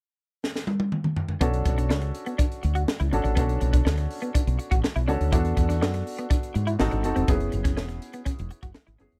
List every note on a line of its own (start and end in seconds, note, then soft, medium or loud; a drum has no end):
0.44 snare medium
0.56 snare medium
0.67 high tom medium
0.80 high tom medium
0.92 mid tom medium
1.04 mid tom medium
1.16 floor tom medium
1.29 floor tom medium
1.41 1.62 B1 medium
1.41 1.48 B3 medium
1.41 2.10 C#4 medium
1.41 2.10 D4 medium
1.41 2.11 F#4 medium
1.41 2.11 A4 medium
1.41 kick loud
1.41 closed hi-hat medium
1.54 closed hi-hat soft
1.65 1.91 B1 medium
1.65 muted clean electric guitar stroke soft
1.65 kick medium
1.65 closed hi-hat medium
1.78 1.85 D4 medium
1.78 closed hi-hat medium
1.89 2.11 C#2 medium
1.89 1.96 D4 medium
1.89 snare loud
2.01 muted clean electric guitar stroke soft
2.01 closed hi-hat soft
2.15 closed hi-hat medium
2.26 2.33 B3 medium
2.26 closed hi-hat soft
2.38 2.45 D4 medium
2.38 kick medium
2.38 closed hi-hat medium
2.52 closed hi-hat soft
2.63 2.84 D2 medium
2.63 muted clean electric guitar stroke soft
2.63 closed hi-hat medium
2.75 2.82 F#4 medium
2.75 closed hi-hat soft
2.88 snare loud
3.00 3.10 C#2 medium
3.00 3.07 E4 medium
3.00 closed hi-hat soft
3.11 3.23 G#1 medium
3.11 3.30 C#4 medium
3.11 3.30 D4 medium
3.11 3.30 F#4 medium
3.11 3.30 A4 medium
3.11 muted clean electric guitar stroke soft
3.11 closed hi-hat medium
3.24 3.35 A1 medium
3.24 3.31 D4 medium
3.24 closed hi-hat soft
3.35 3.57 B1 medium
3.35 3.43 B3 medium
3.35 4.06 C#4 medium
3.35 4.06 D4 medium
3.35 4.06 F#4 medium
3.35 4.07 A4 medium
3.35 kick loud
3.35 closed hi-hat medium
3.49 closed hi-hat soft
3.61 3.82 B1 medium
3.61 muted clean electric guitar stroke soft
3.61 closed hi-hat medium
3.73 3.80 D4 medium
3.73 kick medium
3.73 closed hi-hat medium
3.85 4.06 D2 medium
3.85 3.92 D4 medium
3.85 snare loud
3.98 muted clean electric guitar stroke soft
3.98 snare soft
3.98 closed hi-hat soft
4.11 open hi-hat medium
4.22 4.29 B3 medium
4.22 closed hi-hat soft
4.34 4.41 D4 medium
4.34 kick medium
4.34 closed hi-hat medium
4.47 4.57 B1 medium
4.47 closed hi-hat soft
4.59 muted clean electric guitar stroke soft
4.59 closed hi-hat medium
4.71 4.82 A1 medium
4.71 4.78 F#4 medium
4.71 kick medium
4.71 closed hi-hat soft
4.84 muted clean electric guitar stroke soft
4.84 snare loud
4.96 5.08 B1 medium
4.96 5.02 E4 medium
4.96 closed hi-hat soft
5.08 5.18 C#2 medium
5.08 5.25 C#4 medium
5.08 5.14 D4 medium
5.08 5.26 D4 medium
5.08 5.26 F#4 medium
5.08 5.26 A4 medium
5.08 closed hi-hat medium
5.21 5.31 D2 medium
5.21 closed hi-hat soft
5.32 5.53 E2 medium
5.32 6.01 B3 medium
5.32 6.01 D4 medium
5.32 5.39 E4 medium
5.32 6.02 F#4 medium
5.32 6.02 A4 medium
5.32 kick loud
5.32 closed hi-hat medium
5.45 closed hi-hat soft
5.57 5.82 E2 medium
5.57 muted clean electric guitar stroke soft
5.57 kick medium
5.57 closed hi-hat medium
5.69 5.76 D4 medium
5.69 snare soft
5.69 closed hi-hat medium
5.81 6.02 F#2 medium
5.81 5.88 D4 medium
5.81 snare loud
5.94 muted clean electric guitar stroke soft
5.94 snare soft
5.94 closed hi-hat soft
6.07 open hi-hat medium
6.18 6.25 B3 medium
6.18 closed hi-hat soft
6.30 6.37 D4 medium
6.30 kick medium
6.30 closed hi-hat medium
6.43 closed hi-hat soft
6.54 6.75 G#2 medium
6.54 muted clean electric guitar stroke soft
6.54 closed hi-hat medium
6.67 6.74 E4 medium
6.67 closed hi-hat soft
6.79 6.90 G#1 medium
6.79 6.99 C4 medium
6.79 6.99 D#4 medium
6.79 6.99 F#4 medium
6.79 6.99 A4 medium
6.79 snare loud
6.91 7.05 G#1 medium
6.91 6.98 D4 medium
6.91 closed hi-hat soft
7.03 7.14 F#1 medium
7.03 7.21 C4 medium
7.03 7.21 D#4 medium
7.03 7.21 F#4 medium
7.03 7.22 A4 medium
7.03 muted clean electric guitar stroke soft
7.03 closed hi-hat medium
7.16 7.26 E1 medium
7.16 7.23 C4 medium
7.16 closed hi-hat soft
7.28 7.48 F#1 medium
7.28 7.97 B3 medium
7.28 7.35 B3 medium
7.28 7.98 C#4 medium
7.28 7.98 E4 medium
7.28 7.98 G#4 medium
7.28 kick loud
7.28 closed hi-hat medium
7.40 closed hi-hat soft
7.52 7.79 F#1 medium
7.52 muted clean electric guitar stroke soft
7.52 closed hi-hat medium
7.64 7.71 C#4 medium
7.64 kick medium
7.64 snare soft
7.64 closed hi-hat medium
7.77 7.98 E1 medium
7.77 7.83 C#4 medium
7.77 snare loud
7.89 muted clean electric guitar stroke soft
7.89 snare soft
7.89 closed hi-hat soft
8.02 closed hi-hat medium
8.13 8.20 B3 medium
8.13 closed hi-hat soft
8.25 8.32 C#4 medium
8.25 kick medium
8.25 closed hi-hat medium
8.39 8.49 E1 medium
8.39 closed hi-hat soft
8.51 muted clean electric guitar stroke soft
8.51 closed hi-hat medium
8.63 8.73 F#1 medium
8.63 8.69 F#4 medium
8.63 kick medium
8.63 closed hi-hat soft
8.74 muted clean electric guitar stroke soft
8.74 snare loud
8.87 8.98 G#1 medium
8.87 8.94 E4 medium
8.87 closed hi-hat soft
8.98 9.10 F#1 medium
8.98 9.17 B3 medium
8.98 9.06 C#4 medium
8.98 9.17 C#4 medium
8.98 9.17 E4 medium
8.98 9.18 G#4 medium
8.98 closed hi-hat medium
9.12 9.19 E1 medium
9.12 closed hi-hat medium